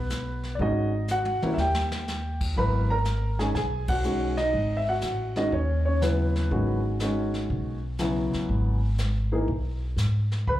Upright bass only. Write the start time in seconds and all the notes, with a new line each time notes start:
Already playing: B1
0.59 G#1
1.43 muted upright bass stroke
1.57 D#2
2.56 G#1
3.55 B1
4.53 G#1
5.02 A1
5.52 D#2
6.51 G#1
7.50 B1
8.34 muted upright bass stroke
8.49 G#1
9.48 B1
9.96 G#2
10.47 C#2